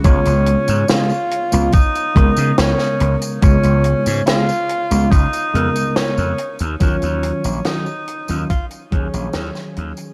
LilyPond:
<<
  \new Staff \with { instrumentName = "Tenor saxophone" } { \time 4/4 \key des \mixolydian \tempo 4 = 71 des'4 f'4 ees'4 des'8. r16 | des'4 f'4 ees'4 des'8. r16 | des'4 ees'4 f'8 des'4 r8 | }
  \new Staff \with { instrumentName = "Tine electric piano" } { \time 4/4 \key des \mixolydian <des aes ces' f'>4 <des aes ces' aes'>16 r8 <des aes ces' f'>16 r8 <des aes ces' bes'>4. | <des aes ces' f'>4 <des aes ces' aes'>16 r8 <des aes ces' f'>16 r8 <des aes ces' bes'>4 r8 | <ees ges des' f'>4 <ees ges des' ges'>16 r8 <ees ges des' f'>16 r8 <ees ges des' aes'>4. | }
  \new Staff \with { instrumentName = "Slap bass" } { \clef bass \time 4/4 \key des \mixolydian des,16 des,16 r16 aes,16 r8. des,16 r8 des,16 des16 des,16 r16 des,16 r16 | des,16 des,16 r16 aes,16 r8. des,16 des,16 r16 f,16 r8 f,16 r16 ees,16 | ees,16 ees,16 r16 bes,,16 r8. ees,16 r8 ees,16 bes,,16 ees,16 r16 ees,16 r16 | }
  \new DrumStaff \with { instrumentName = "Drums" } \drummode { \time 4/4 <hh bd tamb>16 <hh tamb>16 hh16 <hh tamb>16 <hh sn tamb>16 tamb16 hh16 <hh tamb>16 <hh bd tamb>16 <hh tamb>16 <hh bd>16 <hh tamb>16 <hh sn tamb>16 <sn tamb>16 hh16 <hh tamb>16 | <hh bd tamb>16 <hh tamb>16 hh16 <hh tamb>16 <hh sn tamb>16 tamb16 hh16 <hh tamb>16 <hh bd tamb>16 <hh tamb>16 hh16 <hh tamb>16 <hh sn tamb>16 tamb16 hh16 <hh tamb>16 | <hh bd tamb>16 <hh tamb>16 hh16 <hh tamb>16 <hh sn tamb>16 tamb16 hh16 <hh tamb>16 <hh bd tamb>16 <hh tamb>16 <hh bd>16 <hh tamb>16 <hh sn tamb>16 <sn tamb>16 hh16 <hh tamb>16 | }
>>